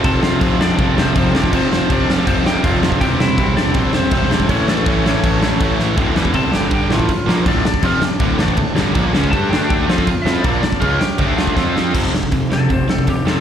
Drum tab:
CC |x---x---x---x---|x---x---x---x---|x---x---x---x---|x---x---x---x---|
HH |----------------|----------------|----------------|----------------|
SD |--o---o---o---o-|--o---o---o---o-|--o---o---o---o-|--o---o---o---o-|
BD |o---o---o---o--o|o---o---o---o--o|o---o---o---o--o|o---o---o---o---|

CC |x---x---x---x---|x---x---x---x---|x---x---x---x---|x---x---x-------|
HH |----------------|----------------|----------------|----------------|
SD |--o---o---o---o-|--o---o---o---o-|--o---o---o---o-|--o---o---o-o-o-|
BD |o--oo---o--oo---|o--oo---o--oo---|o--oo---o--oo---|o--oo---o--oo---|

CC |x---------------|
HH |----o---o---o---|
SD |--o---o---o---o-|
BD |o--oo---o--oo---|